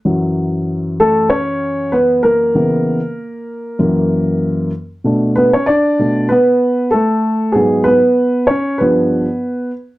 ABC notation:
X:1
M:4/4
L:1/16
Q:"Swing 16ths" 1/4=96
K:F#m
V:1 name="Upright piano"
z6 [A,A]2 [Cc]4 [B,B]2 [_B,_B]2- | [_B,_B]12- [B,B]2 z2 | z2 [B,B] [Cc] [Dd]4 [B,B]4 [A,A]4 | [G,G]2 [B,B]4 [Cc]2 B6 z2 |]
V:2 name="Upright piano" clef=bass
[F,,E,F,]16 | [C,E,B,]2 z6 [F,,E,^A,]6 z2 | [B,,A,D]2 z4 [B,,A,D]2 z8 | [G,,F,B,]2 z6 [=G,,=F,B,]2 z6 |]